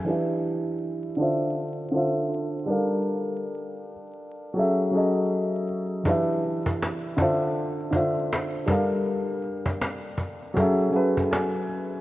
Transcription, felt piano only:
0.05 1.06 E3 medium
0.05 1.07 D4 medium
0.05 1.07 G4 medium
0.09 1.08 B4 medium
0.09 1.09 E5 medium
1.16 1.82 D3 medium
1.16 1.83 D4 medium
1.16 1.83 F4 medium
1.21 1.84 C5 medium
1.21 1.85 E5 medium
1.91 2.65 D3 medium
1.91 2.65 D4 medium
1.91 2.66 F4 medium
1.95 2.67 C5 medium
1.95 2.68 E5 medium
2.66 3.89 G3 medium
2.66 3.90 D4 medium
2.66 3.91 A4 medium
2.70 3.91 A#4 medium
2.70 3.92 F5 medium
4.54 4.87 F#3 medium
4.54 4.88 C#4 medium
4.54 4.88 G#4 medium
4.58 4.89 A4 medium
4.58 4.90 E5 loud
4.91 5.65 F#3 medium
4.91 5.65 C#4 medium
4.91 5.66 G#4 medium
4.95 5.67 A4 medium
4.95 5.67 D#5 medium
6.04 7.05 E3 medium
6.04 7.06 D4 medium
6.04 7.07 G4 medium
6.08 7.07 B4 medium
6.08 7.08 E5 medium
7.17 7.82 D3 medium
7.17 7.83 D4 medium
7.17 7.83 F4 medium
7.21 7.84 C5 medium
7.21 7.85 E5 medium
7.91 8.65 D3 medium
7.91 8.65 D4 medium
7.91 8.66 F4 medium
7.95 8.67 C5 medium
7.95 8.67 E5 medium
8.66 9.89 G3 medium
8.66 9.90 D4 medium
8.66 9.91 A4 medium
8.70 9.91 A#4 medium
8.70 9.92 F5 medium
10.54 10.87 F#3 medium
10.54 10.88 C#4 medium
10.54 10.88 G#4 medium
10.58 10.89 A4 medium
10.58 10.90 E5 medium
10.90 11.64 F#3 medium
10.90 11.65 C#4 medium
10.90 11.66 G#4 medium
10.90 11.28 E5 medium
10.95 11.67 A4 medium
10.95 11.67 B4 medium
11.31 12.01 G#5 medium

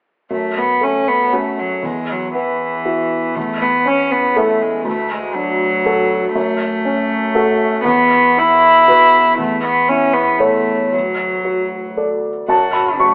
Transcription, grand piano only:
0.31 1.80 F#2 soft
0.81 1.63 A3 soft
1.32 1.80 C#4 soft
1.32 1.80 F#4 soft
1.83 3.31 E2 soft
2.35 3.16 B3 soft
2.85 3.32 E4 soft
2.85 3.32 F#4 soft
3.36 4.81 E2 soft
3.85 4.65 C#4 soft
4.36 4.81 E4 soft
4.36 4.82 A4 soft
4.85 6.31 D2 soft
5.35 6.15 D4 soft
5.85 6.32 F#4 soft
5.85 6.32 A4 soft
6.36 7.82 F#2 soft
6.85 7.66 C#4 soft
7.35 7.82 F#4 soft
7.35 7.82 A4 soft
7.85 9.34 E2 soft
8.37 9.18 E4 soft
8.88 9.34 F#4 soft
8.88 9.35 B4 soft
9.38 10.89 E2 soft
9.89 10.72 E4 soft
10.40 10.88 A4 soft
10.40 10.89 C#5 soft
10.93 12.46 D2 soft
11.45 12.29 F#4 soft
11.97 12.46 A4 soft
11.97 12.46 D5 soft
12.49 13.14 F#2 soft
12.49 12.73 A5 medium
12.73 12.98 B5 soft
13.00 13.14 F#4 soft
13.00 13.14 C#6 soft

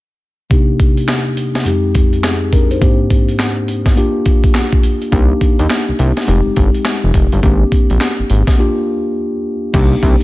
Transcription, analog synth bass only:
5.12 5.34 C2 loud
5.59 5.67 D#2 medium
5.88 5.93 C2 medium
5.99 6.12 C2 medium
6.28 6.41 F1 loud
6.46 6.50 G1 soft
6.57 6.70 G1 medium
7.04 7.12 F1 medium
7.14 7.27 F1 medium
7.33 7.40 G1 medium
7.43 7.64 G#1 loud
7.90 7.98 A#1 medium
8.19 8.23 G#1 medium
8.30 8.43 G#1 medium
9.74 9.95 C2 loud
10.03 10.16 C2 loud

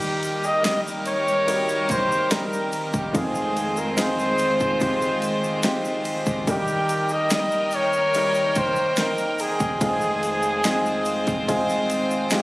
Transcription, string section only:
0.00 12.42 D#3 medium
0.00 3.12 G3 medium
0.00 3.12 A#3 medium
0.00 3.12 G4 medium
0.00 3.12 A#4 medium
3.15 6.45 G#3 medium
3.15 6.45 C4 medium
3.15 6.45 F4 medium
3.15 6.45 C5 medium
6.47 9.78 A#3 medium
6.47 9.78 A#4 medium
6.47 9.78 G5 medium
9.82 12.42 G#3 medium
9.82 12.42 C4 medium
9.82 12.42 F4 medium
9.82 12.42 C5 medium

